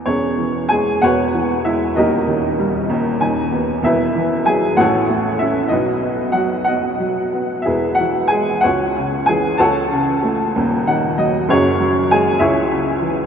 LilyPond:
<<
  \new Staff \with { instrumentName = "Upright piano" } { \time 6/8 \key e \major \tempo 4. = 63 <cis' gis' cis''>4 <gis' gis''>8 <fis' b' cis'' fis''>4 <e' e''>8 | <dis' g' ais' dis''>4. r8 gis''4 | <e' b' e''>4 <gis' gis''>8 <fis' a' cis'' fis''>4 <e' e''>8 | <dis' fis' b' dis''>4 <fis' fis''>8 <fis' dis'' fis''>4 r8 |
<e' gis' b' e''>8 <fis' fis''>8 <gis' gis''>8 <fis' cis'' fis''>4 <gis' gis''>8 | <a' cis'' fis'' a''>4. r8 fis''8 dis''8 | <cis' fis' gis' cis''>4 <gis' gis''>8 <e' gis' cis'' e''>4. | }
  \new Staff \with { instrumentName = "Upright piano" } { \clef bass \time 6/8 \key e \major <e,, e,>8 e8 gis8 <e,, e,>8 e8 gis8 | <dis,, dis,>8 dis8 g8 <dis,, dis,>8 dis8 b8 | <e,, e,>8 e8 fis8 <a,, a,>8 a8 cis'8 | <b,, b,>8 b8 fis8 b8 fis8 b8 |
<e,, e,>8 e8 gis8 cis,8 cis8 e8 | cis,8 cis8 a8 <dis,, dis,>8 dis8 fis8 | <fis,, fis,>8 fis8 gis8 cis,8 cis8 e8 | }
>>